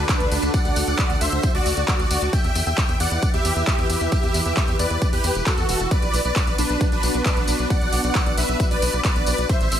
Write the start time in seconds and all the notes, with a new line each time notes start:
Already playing: D3 D4 F#4 A4, downlifter
0.09 D4 B4, kick, clap, closed hi-hat, tambourine
0.20 D2, closed hi-hat, tambourine
0.32 D2 D4 B4, open hi-hat, tambourine
0.42 D2, closed hi-hat, tambourine
0.54 D5 F#5, kick, closed hi-hat, tambourine
0.65 D2, closed hi-hat, tambourine
0.76 D2, open hi-hat, tambourine
0.87 D2 D5 F#5, closed hi-hat, tambourine
0.99 kick, clap, closed hi-hat, tambourine
1.10 D2, closed hi-hat, tambourine
1.21 D2 C5 E5, open hi-hat, tambourine
1.32 D2, closed hi-hat, tambourine
1.43 kick, closed hi-hat, tambourine
1.55 D2 F#4 D5, open hi-hat, tambourine
1.66 D2, open hi-hat, tambourine
1.77 D2, tambourine
1.88 F#4 D5, kick, clap, closed hi-hat, tambourine
1.99 D2, closed hi-hat, tambourine
2.11 D2 F#4 D5, open hi-hat, tambourine
2.22 D2, closed hi-hat, tambourine
2.33 E3 E4 G4 B4 E5 G5, kick, closed hi-hat, tambourine
2.44 E2, closed hi-hat, tambourine
2.55 E2, open hi-hat, tambourine
2.67 E2 E5 G5, closed hi-hat, tambourine
2.78 kick, clap, closed hi-hat, tambourine
2.89 E2, closed hi-hat, tambourine
3.00 E2 D5 F#5, open hi-hat, tambourine
3.11 E2, closed hi-hat, tambourine
3.22 kick, closed hi-hat, tambourine
3.33 E2 G4 E5, closed hi-hat, tambourine
3.45 E2, open hi-hat, tambourine
3.56 E2, closed hi-hat, tambourine
3.67 G4 E5, kick, clap, closed hi-hat, tambourine
3.79 E2, closed hi-hat, tambourine
3.90 E2 G4 E5, open hi-hat, tambourine
4.01 E2, closed hi-hat, tambourine
4.12 G4 E5, kick, closed hi-hat, tambourine
4.23 E2, closed hi-hat, tambourine
4.34 E2, open hi-hat, tambourine
4.45 E2 G4 E5, closed hi-hat, tambourine
4.57 kick, clap, closed hi-hat, tambourine
4.67 E2, closed hi-hat, tambourine
4.79 E2 B4 D5, open hi-hat, tambourine
4.90 E2, closed hi-hat, tambourine
5.02 kick, closed hi-hat, tambourine
5.13 E2 G4 B4, open hi-hat, tambourine
5.24 E2, open hi-hat, tambourine
5.35 E1, closed hi-hat, tambourine
5.46 F#4 A4, kick, clap, closed hi-hat, tambourine
5.58 E2, closed hi-hat, tambourine
5.69 E1 F#4 A4, open hi-hat, tambourine
5.80 E1, closed hi-hat, tambourine
5.91 B3 D4 F#4 B4 D5, kick, closed hi-hat, tambourine
6.02 B1, closed hi-hat, tambourine
6.14 B1, open hi-hat, tambourine
6.25 B1 B4 D5, closed hi-hat, tambourine
6.36 kick, clap, closed hi-hat, tambourine
6.47 B1, closed hi-hat, tambourine
6.58 B1 D4 B4, open hi-hat, tambourine
6.70 B1, closed hi-hat, tambourine
6.81 kick, closed hi-hat, tambourine
6.92 B1 D4 B4, closed hi-hat, tambourine
7.03 B1, open hi-hat, tambourine
7.14 B1, closed hi-hat, tambourine
7.26 D4 B4, kick, clap, closed hi-hat, tambourine
7.37 B1, closed hi-hat, tambourine
7.47 B1 D4 B4, open hi-hat, tambourine
7.59 B1, closed hi-hat, tambourine
7.70 D5 F#5, kick, closed hi-hat, tambourine
7.82 B1, closed hi-hat, tambourine
7.92 B1, open hi-hat, tambourine
8.04 B1 D5 F#5, closed hi-hat, tambourine
8.15 kick, clap, closed hi-hat, tambourine
8.26 B1, closed hi-hat, tambourine
8.37 B1 B4 E5, open hi-hat, tambourine
8.49 B1, closed hi-hat, tambourine
8.60 kick, closed hi-hat, tambourine
8.71 B1 B4 D5, open hi-hat, tambourine
8.82 B1, open hi-hat, tambourine
8.93 B1, closed hi-hat, tambourine
9.04 B4 D5, kick, clap, closed hi-hat, tambourine
9.16 B1, closed hi-hat, tambourine
9.26 B1 B4 D5, open hi-hat, tambourine
9.38 B1, closed hi-hat, tambourine
9.49 A3 C4 E4 C5 E5, kick, closed hi-hat, tambourine
9.60 A1, closed hi-hat, tambourine
9.72 A1, open hi-hat, tambourine